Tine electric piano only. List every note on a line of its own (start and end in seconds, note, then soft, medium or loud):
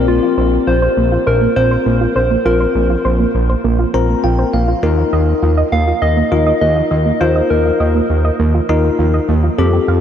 0.00 0.73 C4 medium
0.00 0.73 F4 medium
0.00 0.73 A#4 loud
1.56 2.20 C4 medium
1.56 2.20 F4 medium
1.56 2.20 A#4 medium
2.46 3.30 C4 medium
2.46 3.30 F4 medium
2.46 3.30 A#4 medium
3.94 4.57 C4 medium
3.94 4.57 F4 medium
3.94 4.57 A#4 medium
3.94 4.22 A#5 medium
4.24 4.51 G5 medium
4.54 4.81 F5 medium
4.83 5.67 D#4 medium
4.83 5.67 F4 medium
4.83 5.67 A#4 medium
6.32 6.95 D#4 medium
6.32 6.95 F4 medium
6.32 6.95 A#4 medium
7.21 8.05 D#4 medium
7.21 8.05 F4 medium
7.21 8.05 A#4 medium
8.69 9.33 D#4 medium
8.69 9.33 F4 medium
8.69 9.33 A#4 medium
9.59 10.01 C4 medium
9.59 10.01 F4 medium
9.59 10.01 A4 medium